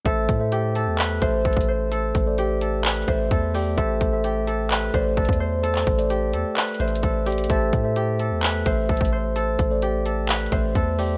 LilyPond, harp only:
\new Staff \with { instrumentName = "Harp" } { \time 4/4 \key a \minor \tempo 4 = 129 a'4 g'8 a'8 b'8 c''8 a'8 c''8 | a'4 g'8 a'8 b'8 c''8 a'8 g'8 | a'4 g'8 a'8 b'8 c''8 a'8 c''8 | a'4 g'8 a'8 b'8 c''8 a'8 g'8 |
a'4 g'8 a'8 b'8 c''8 a'8 c''8 | a'4 g'8 a'8 b'8 c''8 a'8 g'8 | }